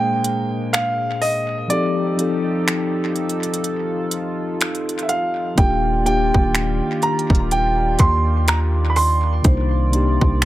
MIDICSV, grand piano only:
0, 0, Header, 1, 2, 480
1, 0, Start_track
1, 0, Key_signature, -3, "major"
1, 0, Tempo, 967742
1, 845, Time_signature, 4, 2, 24, 8
1, 5183, End_track
2, 0, Start_track
2, 0, Title_t, "Grand piano"
2, 0, Program_c, 0, 0
2, 0, Note_on_c, 0, 79, 100
2, 344, Note_off_c, 0, 79, 0
2, 362, Note_on_c, 0, 77, 89
2, 602, Note_on_c, 0, 75, 90
2, 611, Note_off_c, 0, 77, 0
2, 827, Note_off_c, 0, 75, 0
2, 842, Note_on_c, 0, 74, 78
2, 1784, Note_off_c, 0, 74, 0
2, 2493, Note_on_c, 0, 76, 52
2, 2523, Note_off_c, 0, 76, 0
2, 2524, Note_on_c, 0, 77, 75
2, 2766, Note_on_c, 0, 79, 81
2, 2772, Note_off_c, 0, 77, 0
2, 2998, Note_off_c, 0, 79, 0
2, 3006, Note_on_c, 0, 79, 86
2, 3486, Note_on_c, 0, 82, 87
2, 3499, Note_off_c, 0, 79, 0
2, 3728, Note_on_c, 0, 79, 86
2, 3733, Note_off_c, 0, 82, 0
2, 3967, Note_on_c, 0, 84, 92
2, 3974, Note_off_c, 0, 79, 0
2, 4207, Note_on_c, 0, 82, 89
2, 4213, Note_off_c, 0, 84, 0
2, 4254, Note_off_c, 0, 82, 0
2, 4413, Note_on_c, 0, 83, 70
2, 4443, Note_off_c, 0, 83, 0
2, 4446, Note_on_c, 0, 84, 104
2, 5183, Note_off_c, 0, 84, 0
2, 5183, End_track
0, 0, End_of_file